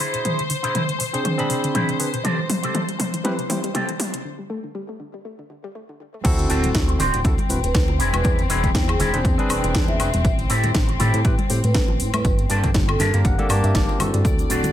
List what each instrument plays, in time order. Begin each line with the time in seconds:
Already playing: string section C5
0.00 synth arpeggio sound D3, clean electric guitar D4 E4 G#4 C5, open hi-hat
0.14 synth arpeggio sound B2, closed hi-hat
0.25 synth arpeggio sound B2, closed hi-hat, mid tom
0.39 synth arpeggio sound C3, closed hi-hat
0.49 synth arpeggio sound D3, muted clean electric guitar stroke, open hi-hat
0.63 synth arpeggio sound B2, clean electric guitar D4 E4 G#4 C5, closed hi-hat
0.75 synth arpeggio sound C3, closed hi-hat, mid tom
0.89 synth arpeggio sound D3, closed hi-hat
0.99 synth arpeggio sound B2, muted clean electric guitar stroke, open hi-hat
1.13 synth arpeggio sound C3, tine electric piano C4 D4 G#4 C5, muted clean electric guitar stroke, closed hi-hat
1.23 synth arpeggio sound D3, muted clean electric guitar stroke, closed hi-hat, mid tom
1.38 synth arpeggio sound B2, tine electric piano C4 D4 G#4 B5, muted clean electric guitar stroke, closed hi-hat
1.50 synth arpeggio sound C3, open hi-hat
1.64 synth arpeggio sound D3, closed hi-hat
1.74 synth arpeggio sound B2, clean electric guitar D4 E4 G#4 C5, closed hi-hat, mid tom
1.89 synth arpeggio sound C3, closed hi-hat
1.99 synth arpeggio sound D3, tine electric piano C4 D4 G#4 B4, muted clean electric guitar stroke, open hi-hat
2.14 synth arpeggio sound B2, closed hi-hat
2.24 synth arpeggio sound C3, clean electric guitar C4 G4 A4, closed hi-hat, mid tom
2.39 synth arpeggio sound E3
2.48 synth arpeggio sound G3, muted clean electric guitar stroke, open hi-hat, mid tom
2.63 synth arpeggio sound C3, clean electric guitar C4 G4 A4, closed hi-hat
2.75 synth arpeggio sound E3, closed hi-hat, mid tom
2.89 synth arpeggio sound G3, closed hi-hat
2.99 synth arpeggio sound C3, muted clean electric guitar stroke, open hi-hat, mid tom
3.13 synth arpeggio sound E3, muted clean electric guitar stroke, closed hi-hat
3.24 synth arpeggio sound G3, tine electric piano C4 E4 G4 B4, muted clean electric guitar stroke, closed hi-hat, mid tom
3.38 synth arpeggio sound C3, muted clean electric guitar stroke, closed hi-hat
3.49 synth arpeggio sound E3, tine electric piano C4 E4 G4 C5, open hi-hat, mid tom
3.64 synth arpeggio sound G3, closed hi-hat
3.74 synth arpeggio sound C3, clean electric guitar C4 G4 A4, closed hi-hat, mid tom
3.89 synth arpeggio sound E3, closed hi-hat
3.99 synth arpeggio sound G3, muted clean electric guitar stroke, open hi-hat, mid tom
4.14 synth arpeggio sound C3, closed hi-hat
4.25 synth arpeggio sound D3
4.39 synth arpeggio sound G3
4.50 synth arpeggio sound A3
4.64 synth arpeggio sound D3
4.75 synth arpeggio sound G3
4.89 synth arpeggio sound A3
5.00 synth arpeggio sound D3
5.14 synth arpeggio sound G3
5.25 synth arpeggio sound A3
5.39 synth arpeggio sound D3
5.50 synth arpeggio sound D3
5.64 synth arpeggio sound G3
5.75 synth arpeggio sound A3
5.89 synth arpeggio sound D3
6.00 synth arpeggio sound D3
6.14 synth arpeggio sound A3
6.24 analog synth bass D2, tine electric piano C4 E4 F#4 A4, string section C4, kick, closed hi-hat, crash, tambourine
6.39 closed hi-hat, tambourine
6.49 analog synth bass D1, clean electric guitar C4 D4 F#4 A4, open hi-hat, tambourine
6.63 closed hi-hat, tambourine, high conga, low conga
6.75 analog synth bass D2, kick, snare, closed hi-hat, tambourine
6.88 muted clean electric guitar stroke, closed hi-hat
6.99 analog synth bass D1, clean electric guitar C4 D4 F#4 C5, open hi-hat, tambourine, high bongo, low conga
7.14 analog synth bass D1, closed hi-hat, tambourine
7.24 analog synth bass D2, tine electric piano C4 E4 F#4 A4, kick, closed hi-hat, tambourine
7.38 muted clean electric guitar stroke, closed hi-hat, high conga
7.49 analog synth bass D1, tine electric piano C4 E4 F#4 B4, open hi-hat, tambourine
7.63 analog synth bass D1, vibraphone B4, closed hi-hat, tambourine, high bongo
7.74 analog synth bass D2, kick, snare, closed hi-hat, tambourine, high conga
7.88 muted clean electric guitar stroke, high bongo
7.99 analog synth bass E1, clean electric guitar C4 D4 E4 G#4, open hi-hat, tambourine
8.13 analog synth bass E1, vibraphone B4, closed hi-hat, tambourine, high conga, high woodblock
8.24 analog synth bass E2, kick, closed hi-hat, tambourine
8.39 closed hi-hat, tambourine
8.49 analog synth bass E1, clean electric guitar C4 D4 E4 G#4, open hi-hat, tambourine
8.63 kick, closed hi-hat, tambourine, high conga, low conga
8.75 analog synth bass E2, kick, snare, closed hi-hat, tambourine
8.88 vibraphone G#4, muted clean electric guitar stroke, closed hi-hat, high woodblock
8.99 analog synth bass E1, clean electric guitar C4 D4 E4 G#4, snare, open hi-hat, tambourine, high conga, low conga
9.13 analog synth bass E1, tine electric piano C4 D4 G#4 C5, closed hi-hat, tambourine
9.25 analog synth bass E2, kick, closed hi-hat, tambourine
9.38 tine electric piano C4 D4 G#4 B4, muted clean electric guitar stroke, closed hi-hat, high conga
9.49 analog synth bass E1, vibraphone B4, open hi-hat, tambourine, high woodblock
9.64 analog synth bass E1, closed hi-hat, tambourine, high bongo
9.75 analog synth bass E2, kick, snare, closed hi-hat, tambourine, high conga
9.88 vibraphone E5, muted clean electric guitar stroke, high bongo
9.99 analog synth bass E1, tine electric piano C4 D4 G#4 B4, open hi-hat, tambourine, high woodblock
10.14 analog synth bass E1, closed hi-hat, tambourine, high conga
10.25 analog synth bass A1, kick, closed hi-hat, tambourine
10.39 closed hi-hat, tambourine
10.49 analog synth bass A2, clean electric guitar C4 E4 G4 A4, open hi-hat, tambourine
10.63 closed hi-hat, tambourine, high conga, low conga
10.74 analog synth bass A1, kick, snare, closed hi-hat, tambourine
10.88 muted clean electric guitar stroke, closed hi-hat
10.99 analog synth bass A2, clean electric guitar C4 E4 G4 A4, open hi-hat, tambourine, high bongo, high conga, low conga
11.14 analog synth bass A2, closed hi-hat, tambourine
11.25 analog synth bass A1, tine electric piano C4 E4 G4 B4, kick, closed hi-hat, tambourine
11.38 muted clean electric guitar stroke, closed hi-hat, high conga
11.49 analog synth bass A2, tine electric piano C4 E4 G4 C5, open hi-hat, tambourine
11.64 analog synth bass A2, vibraphone B4, closed hi-hat, tambourine, high bongo
11.75 analog synth bass A1, kick, snare, closed hi-hat, tambourine, high conga
11.88 muted clean electric guitar stroke, high bongo
11.99 analog synth bass A2, muted clean electric guitar stroke, open hi-hat, tambourine
12.13 analog synth bass A2, vibraphone B4, muted clean electric guitar stroke, closed hi-hat, tambourine, high conga, high woodblock
12.25 analog synth bass G1, kick, closed hi-hat, tambourine
12.38 closed hi-hat, tambourine
12.49 analog synth bass G2, clean electric guitar A#3 D4 G4 A4, open hi-hat, tambourine
12.64 kick, closed hi-hat, tambourine, high conga, low conga
12.74 analog synth bass G1, kick, snare, closed hi-hat, tambourine
12.88 vibraphone A4, muted clean electric guitar stroke, closed hi-hat, high woodblock
12.99 analog synth bass G2, clean electric guitar A#3 D4 G4 A#4 A5, snare, open hi-hat, tambourine, low conga
13.13 analog synth bass G2, tine electric piano A#3 D4 G4 A#4, closed hi-hat, tambourine
13.25 analog synth bass G1, clean electric guitar F#5, kick, closed hi-hat, tambourine
13.38 tine electric piano A#3 D4 G4 A4, muted clean electric guitar stroke, closed hi-hat, high conga
13.49 analog synth bass G2, tine electric piano A#3 D4 G4 A5, open hi-hat, tambourine, high woodblock
13.63 analog synth bass G2, clean electric guitar E5, closed hi-hat, tambourine, high bongo
13.75 analog synth bass G1, clean electric guitar D5, kick, snare, closed hi-hat, tambourine, high conga
13.88 muted clean electric guitar stroke, tambourine, high bongo
13.99 analog synth bass G2, tine electric piano C4 E4 F#4 A4, muted clean electric guitar stroke, open hi-hat, tambourine, low conga, high woodblock
14.13 analog synth bass G2, muted clean electric guitar stroke, closed hi-hat, tambourine, high conga
14.25 analog synth bass D2, string section D5, kick, closed hi-hat, tambourine, shaker
14.38 closed hi-hat, tambourine, shaker
14.49 analog synth bass D1, clean electric guitar C4 D4 F#4 A4, open hi-hat, tambourine, shaker
14.63 closed hi-hat, tambourine, high conga, low conga, shaker